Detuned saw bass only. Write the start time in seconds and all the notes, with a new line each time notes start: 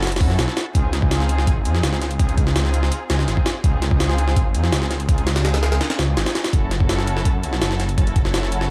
Already playing: F#1
0.21 F#2
0.39 B1
0.75 C#2
1.47 G#1
1.65 F2
1.83 C#2
2.19 C#2
3.10 C#2
3.28 G#1
3.64 C#2
4.36 G#1
4.54 F2
4.73 C#2
5.09 C#2
5.99 C#2
6.17 G#1
6.53 F#1
7.25 F#2
7.43 B1
7.62 F#1
7.98 F#1